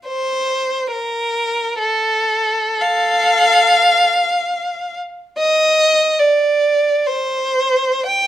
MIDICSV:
0, 0, Header, 1, 2, 480
1, 0, Start_track
1, 0, Tempo, 854701
1, 39, Time_signature, 3, 2, 24, 8
1, 1000, Tempo, 1023891
1, 1480, Tempo, 853485
1, 3880, Tempo, 981997
1, 4467, End_track
2, 0, Start_track
2, 0, Title_t, "Violin"
2, 0, Program_c, 0, 40
2, 38, Note_on_c, 0, 72, 64
2, 488, Note_off_c, 0, 72, 0
2, 512, Note_on_c, 0, 70, 65
2, 1000, Note_off_c, 0, 70, 0
2, 1003, Note_on_c, 0, 69, 68
2, 1472, Note_off_c, 0, 69, 0
2, 1480, Note_on_c, 0, 69, 59
2, 1481, Note_on_c, 0, 77, 78
2, 2185, Note_off_c, 0, 69, 0
2, 2694, Note_off_c, 0, 77, 0
2, 2932, Note_on_c, 0, 75, 84
2, 3367, Note_off_c, 0, 75, 0
2, 3384, Note_on_c, 0, 74, 67
2, 3877, Note_on_c, 0, 72, 70
2, 3878, Note_off_c, 0, 74, 0
2, 4366, Note_off_c, 0, 72, 0
2, 4366, Note_on_c, 0, 79, 80
2, 4467, Note_off_c, 0, 79, 0
2, 4467, End_track
0, 0, End_of_file